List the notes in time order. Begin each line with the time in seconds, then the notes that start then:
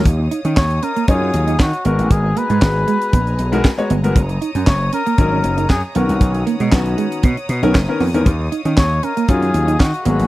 0.05 D#2 C#5 D#5 F5 D#6, kick, closed hi-hat
0.19 muted clean electric guitar stroke
0.31 D#4, closed hi-hat
0.45 D#3 C#4, closed hi-hat
0.57 D#2 C#5, muted clean electric guitar stroke, kick, snare, clap
0.70 closed hi-hat
0.83 C#4 A#4, closed hi-hat
0.96 A#3, closed hi-hat
1.08 F#2 F#3 D#4 F4 G#4 C#5, kick, closed hi-hat
1.22 C#4
1.34 D#2, muted clean electric guitar stroke, closed hi-hat
1.47 D#4, closed hi-hat
1.59 D#3 F#4, kick, snare, clap
1.73 closed hi-hat
1.85 G#1 G#3 B3 F#4 G#4 A#4 G#5 A#5, closed hi-hat
1.99 A1, closed hi-hat
2.11 G#1 G#4, kick, closed hi-hat
2.24 muted clean electric guitar stroke
2.36 A#3 B4, closed hi-hat
2.50 G#2 G#3, closed hi-hat
2.62 G#1 G#3 B3 F#4 G#4, kick, snare, clap
2.88 G#3, closed hi-hat
3.02 closed hi-hat
3.13 A#1 B3, kick, closed hi-hat
3.27 muted clean electric guitar stroke, closed hi-hat
3.39 B1, closed hi-hat
3.52 G#3 B3 D#4 F#4 A#4, closed hi-hat
3.65 kick, snare, clap
3.78 G#3 B3 F#4 C#5, closed hi-hat
3.90 G1 B3, closed hi-hat
4.04 G#3 B3 F#4 A#4, closed hi-hat
4.16 F#1 C#5 D#6, kick, closed hi-hat
4.29 muted clean electric guitar stroke, closed hi-hat
4.41 D#4, closed hi-hat
4.55 F#2 C#4, closed hi-hat
4.67 F#1 C#5, muted clean electric guitar stroke, kick, snare, clap
4.93 C#4 A#4, closed hi-hat
5.06 A#3, closed hi-hat
5.18 G#1 F#3 C#4 D#4 A#4, kick, closed hi-hat
5.32 C#4
5.44 F#1, muted clean electric guitar stroke, closed hi-hat
5.58 D#4, closed hi-hat
5.70 F#2 G#4, kick, snare, clap
5.95 B1 D#3 B3 C#4 F#4 A#4 F#5 D#6, closed hi-hat
6.09 C2, closed hi-hat
6.21 B1, kick, closed hi-hat
6.34 muted clean electric guitar stroke, closed hi-hat
6.47 A#3, closed hi-hat
6.60 B2 G#3, closed hi-hat
6.72 B1 D#3 B3 C#4 F#4, kick, snare, clap
6.86 closed hi-hat
6.98 G#3, closed hi-hat
7.12 closed hi-hat
7.23 B2 B3, kick, closed hi-hat
7.37 muted clean electric guitar stroke, closed hi-hat
7.49 B2, closed hi-hat
7.62 B1 D#3 B3 C#4 D#4 A#4, closed hi-hat
7.75 F#1, kick, snare, clap
7.88 D#3 B3 C#4 A#4
8.00 F2 B3, open hi-hat
8.14 E2 D#3 B3 C#4 A#4, closed hi-hat
8.26 D#2 D#5 F5, kick, closed hi-hat
8.40 muted clean electric guitar stroke
8.52 D#4, closed hi-hat
8.65 D#3 C#4, closed hi-hat
8.77 D#2 C#5, muted clean electric guitar stroke, kick, snare, clap
9.03 C#4 A#4, closed hi-hat
9.17 A#3, closed hi-hat
9.28 F#2 D#3 F#3 C#4 F4 G#4, kick, closed hi-hat
9.42 C#4, closed hi-hat
9.54 D#2, muted clean electric guitar stroke, closed hi-hat
9.68 D#4, closed hi-hat
9.80 D#3 F#4, kick, snare, clap
9.94 closed hi-hat
10.05 G#1 F#3 A#3 B3 F#4 G#4 A#5 B5, closed hi-hat
10.19 A1, closed hi-hat